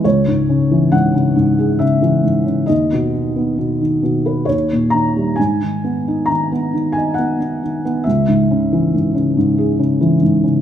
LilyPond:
<<
  \new Staff \with { instrumentName = "Felt piano" } { \time 3/4 \key cis \dorian \tempo 4 = 68 cis''4 fis''4 e''4 | dis''2 cis''8 ais''8 | gis''4 ais''8. gis''16 fis''4 | e''2~ e''8 r8 | }
  \new Staff \with { instrumentName = "Felt piano" } { \clef bass \time 3/4 \key cis \dorian cis,16 gis,16 cis16 e16 gis,16 cis16 gis,16 gis'16 cis16 e16 gis,16 cis16 | dis,16 b,16 dis16 b16 b,16 dis16 b,16 b'16 dis,16 ais,16 dis16 g16 | gis,16 dis16 b16 dis'16 dis16 b16 dis16 dis''16 b16 dis'16 dis16 b16 | cis,16 gis,16 cis16 e16 gis,16 cis16 gis,16 gis'16 cis16 e16 gis,16 cis16 | }
>>